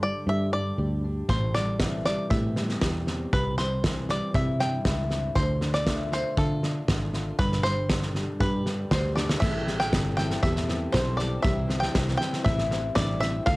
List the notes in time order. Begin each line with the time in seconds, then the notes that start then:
Already playing: G1 G2 D3 D4
0.02 G3 D5
0.27 G2 G4 E5
0.52 G2 G3 D5
0.78 D2 G4
1.04 D4
1.29 A1 A2 C5, kick, snare
1.54 G3 D5, snare
1.80 E3 C4, kick, snare
2.05 G3 D5, snare
2.30 A2 G4 E5, kick, snare
2.56 E2 G3, snare
2.69 snare
2.82 E2 G4, kick, snare
3.07 C4, snare
3.33 C2 C3 B4, kick, snare
3.58 G3 C5, snare
3.84 E3 C4, kick, snare
4.09 G3 D5, snare
4.34 C3 E4 E5, kick, snare
4.59 G2 G3 G5, snare
4.85 C#2 E4, kick, snare
5.10 C4, snare
5.35 D2 D3 C5, kick, snare
5.61 D4, snare
5.74 D5, snare
5.87 A3 F4, kick, snare
6.12 D4 C5, snare
6.37 D3 F4 A4, kick, snare
6.63 D4, snare
6.88 G#1 F4, kick, snare
7.14 F4, snare
7.39 G1 G2 B4, kick, snare
7.52 snare
7.63 G3 C5, snare
7.90 D3 D4, kick, snare
8.02 snare
8.15 G3, snare
8.40 G2 G4 B4, kick, snare
8.66 G2 G3, snare
8.91 D2 G4 C5, kick, snare
9.16 D4 D5, snare
9.29 snare
9.40 A1 A2 E3 G3 C4 E4 A4 E5, kick, snare, crash
9.67 G3 C4 E4 A4, snare
9.80 G5, snare
9.92 G1 G3 C4 E4 A4, kick, snare
10.17 E3 G3 C4 E4 A4 G5, snare
10.31 snare
10.42 E2 A2 E3 G3 C4 E4 G4 A4 E5, kick, snare
10.56 snare
10.68 G3 C4 E4 A4, snare
10.92 B1 E2 G3 C4 E4 A4 C5, kick, snare
11.17 G3 C4 E4 A4 D5, snare
11.42 C2 C3 E3 G3 C4 E4 C5 E5, kick, snare
11.46 G3 C4 E4
11.69 G3 C4 E4 C5, snare
11.80 G5, snare
11.93 C2 G3 C4 E4 C5, kick, snare
12.08 snare
12.17 E3 G3 C4 E4 C5 G5, snare
12.33 snare
12.44 A1 C3 E3 G3 C4 E4 C5 E5, kick, snare
12.59 snare
12.71 G3 C4 E4 C5, snare
12.95 A1 G2 G3 C4 E4 C5 D5, kick, snare
13.20 G3 C4 E4 C5 E5, snare
13.46 D2 D3 A3 D4 F4 A4 F5, kick, snare